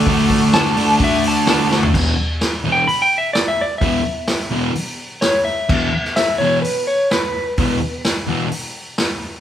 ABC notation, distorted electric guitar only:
X:1
M:4/4
L:1/8
Q:1/4=128
K:Dlyd
V:1 name="Distorted electric guitar" clef=bass
[D,A,D]2 [D,A,D] [D,A,D] [D,A,D]2 [D,A,D] [D,A,D] | [E,,B,,E,] z2 [E,,B,,E,] z4 | [E,,B,,E,] z2 [E,,B,,E,] z4 | [E,,B,,E,] z2 [E,,B,,E,] z4 |
[E,,B,,E,] z2 [E,,B,,E,] z4 |]